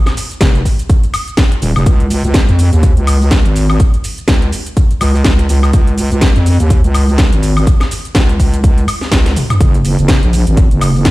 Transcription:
0.06 snare, closed hi-hat, high woodblock, shaker
0.17 open hi-hat, shaker
0.31 closed hi-hat, shaker
0.41 F1, kick, snare, closed hi-hat, shaker
0.55 closed hi-hat, shaker
0.65 kick, open hi-hat, shaker
0.79 closed hi-hat, shaker
0.90 kick, closed hi-hat, shaker
1.03 closed hi-hat, shaker
1.14 open hi-hat, high woodblock, shaker
1.28 closed hi-hat, shaker
1.37 kick, snare, closed hi-hat, shaker
1.52 closed hi-hat, shaker
1.62 D#1, open hi-hat, shaker
1.76 F1, high woodblock, shaker
1.86 C#2, kick, closed hi-hat, shaker
2.00 closed hi-hat, shaker
2.10 open hi-hat, shaker
2.24 C#2, closed hi-hat, shaker
2.34 kick, snare, closed hi-hat, shaker
2.48 F2, closed hi-hat, shaker
2.59 open hi-hat, shaker
2.73 D#2, closed hi-hat, shaker
2.83 kick, closed hi-hat, shaker
2.97 C#2, closed hi-hat, shaker
3.07 open hi-hat, high woodblock, shaker
3.22 shaker
3.31 kick, snare, closed hi-hat, shaker
3.45 G#1, closed hi-hat, shaker
3.56 open hi-hat, shaker
3.70 high woodblock, shaker
3.80 kick, closed hi-hat, shaker
3.94 closed hi-hat, shaker
4.04 open hi-hat, shaker
4.18 closed hi-hat, shaker
4.28 C#2, kick, snare, closed hi-hat, shaker
4.42 closed hi-hat, shaker
4.52 open hi-hat, shaker
4.66 closed hi-hat, shaker
4.77 kick, closed hi-hat, shaker
4.91 closed hi-hat, shaker
5.01 C#2, open hi-hat, high woodblock, shaker
5.15 shaker
5.24 C#2, kick, snare, closed hi-hat, shaker
5.39 closed hi-hat, shaker
5.49 C#2, open hi-hat, shaker
5.63 high woodblock, shaker
5.73 C#2, kick, closed hi-hat, shaker
5.87 closed hi-hat, shaker
5.98 open hi-hat, shaker
6.12 C#2, closed hi-hat, shaker
6.21 kick, snare, closed hi-hat, shaker
6.36 F2, closed hi-hat, shaker
6.46 open hi-hat, shaker
6.60 D#2, closed hi-hat, shaker
6.70 kick, closed hi-hat, shaker
6.84 C#2, closed hi-hat, shaker
6.94 open hi-hat, high woodblock, shaker
7.09 shaker
7.18 kick, snare, closed hi-hat, shaker
7.33 G#1, closed hi-hat, shaker
7.43 open hi-hat, shaker
7.57 high woodblock, shaker
7.67 kick, closed hi-hat, shaker
7.80 snare, closed hi-hat, high woodblock, shaker
7.91 open hi-hat, shaker
8.05 closed hi-hat, shaker
8.15 C#2, kick, snare, closed hi-hat, shaker
8.29 closed hi-hat, shaker
8.40 C#2, kick, open hi-hat, shaker
8.54 closed hi-hat, shaker
8.64 kick, closed hi-hat, shaker
8.78 closed hi-hat, shaker
8.88 open hi-hat, high woodblock, shaker
9.01 snare, shaker
9.12 C#2, kick, snare, closed hi-hat, shaker
9.26 snare, closed hi-hat, shaker
9.36 open hi-hat, mid tom, shaker
9.50 closed hi-hat, mid tom, high woodblock, shaker
9.61 F#1, kick, closed hi-hat, shaker
9.74 closed hi-hat, shaker
9.85 open hi-hat, shaker
9.99 F#1, closed hi-hat, shaker
10.08 kick, snare, closed hi-hat, shaker
10.23 A#1, closed hi-hat, shaker
10.33 open hi-hat, shaker
10.47 G#1, closed hi-hat, shaker
10.57 kick, closed hi-hat, shaker
10.71 F#1, closed hi-hat, shaker
10.81 open hi-hat, high woodblock, shaker
10.96 shaker
11.05 kick, snare, closed hi-hat, shaker

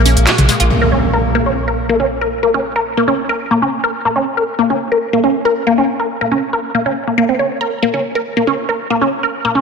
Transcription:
Already playing: A#2 A#3
0.06 A#1 C#4, open hi-hat, tambourine
0.17 A#1, closed hi-hat
0.27 F#4, snare, clap, closed hi-hat, open hi-hat
0.38 A#1, closed hi-hat, mid tom
0.49 G#3, snare, open hi-hat, tambourine
0.60 A#1 F4, closed hi-hat
0.70 crash, impact
0.82 A#3
0.92 C#4
1.13 A#4
1.35 A#3
1.46 C#4
1.68 A#4
1.89 A#3
2.00 C#4
2.21 A#4
2.43 A#3
2.54 C#4
2.76 A#4
2.97 A#3
3.08 C#4
3.29 A#4
3.51 A#3
3.62 C#4
3.84 A#4
4.05 A#3
4.16 C#4
4.37 A#4
4.59 A#3
4.70 C#4
4.92 A#4
5.13 A#3
5.24 C#4
5.45 A#4
5.67 A#3
5.78 C#4
6.00 A#4
6.21 A#3
6.32 C#4
6.53 A#4
6.75 A#3
6.86 C#4
7.07 A#3
7.18 A#3
7.29 C4
7.39 C#4
7.61 A#4
7.83 A#3
7.94 C#4
8.15 A#4
8.37 A#3
8.47 C#4
8.69 A#4
8.90 A#3
9.02 C#4
9.23 A#4
9.45 A#3
9.55 C#4

